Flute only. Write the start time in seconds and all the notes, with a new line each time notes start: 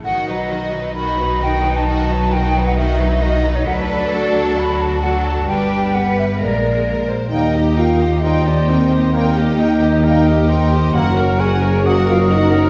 0.05 F#5
0.29 D#5
0.95 B5
1.42 G5
1.77 A5
2.33 G5
2.67 F#5
2.77 E5
3.22 D#5
3.55 C#5
3.66 F#5
3.89 D5
4.58 B5
4.81 A5
5.03 F#5
5.25 A5
5.48 G5
5.94 F#5
6.19 E5
6.42 D5
7.32 D#5
7.78 F5
8.22 D#5
8.46 D5
8.69 C5
9.14 A#4
9.58 D#5
10.04 D#5
10.94 F#5
11.40 G#5
11.86 F#5
12.10 F5
12.29 D#5